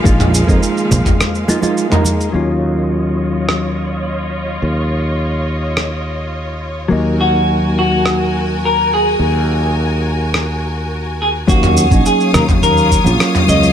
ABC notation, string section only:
X:1
M:4/4
L:1/8
Q:1/4=105
K:Ebm
V:1 name="String section"
[E,F,A,B,f]8 | [Fde]8- | [Fde]8 | [GBa]8- |
[GBa]8 | [dfe']8 |]